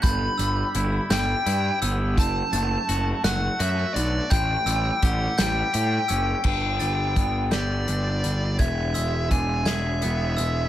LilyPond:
<<
  \new Staff \with { instrumentName = "Glockenspiel" } { \time 6/8 \key a \mixolydian \tempo 4. = 56 g'''8 e'''4 g'''4 e'''8 | r8 a'''4 fis'''4 r8 | g'''8 e'''4 g'''4 e'''8 | r8 a'''4 g'''4 r8 |
gis'''8 e'''4 gis'''4 e'''8 | }
  \new Staff \with { instrumentName = "Lead electric guitar" } { \time 6/8 \key a \mixolydian b''4. g''4 r8 | a''4. fis''8 e''8 d''8 | g''4 fis''8 g''4. | g''4. d''4. |
e''4 gis''8 e''4. | }
  \new Staff \with { instrumentName = "Clean electric guitar" } { \time 6/8 \key a \mixolydian g,8 g8 e'8 g8 e'8 b8 | fis,8 a8 fis'8 a8 fis'8 d'8 | a,8 g8 g'8 g8 g'8 cis'8 | g,8 g8 b8 g'8 d'8 g8 |
e,8 gis8 d'8 gis'8 b8 gis8 | }
  \new Staff \with { instrumentName = "Picked electric bass" } { \clef bass \time 6/8 \key a \mixolydian g,,8 g,,8 g,,8 g,,8 g,8 g,,8 | fis,,8 fis,,8 fis,,8 fis,,8 fis,8 b,,8 | a,,8 a,,8 a,,8 a,,8 a,8 fis,,8 | g,,8 g,,8 g,,8 g,,8 g,,8 g,,8 |
e,,8 e,,8 e,,8 e,,8 e,,8 e,,8 | }
  \new DrumStaff \with { instrumentName = "Drums" } \drummode { \time 6/8 <hh bd>8 hh8 hh8 <hh sn>8 hh8 hh8 | <hh bd>8 hh8 hh8 <hh sn>8 hh8 hh8 | <hh bd>8 hh8 <hh bd>8 <hh sn>8 hh8 hh8 | <cymc bd>8 hh8 <hh bd>8 <hh sn>8 hh8 hh8 |
<hh bd>8 hh8 <hh bd>8 <hh sn>8 hh8 hh8 | }
>>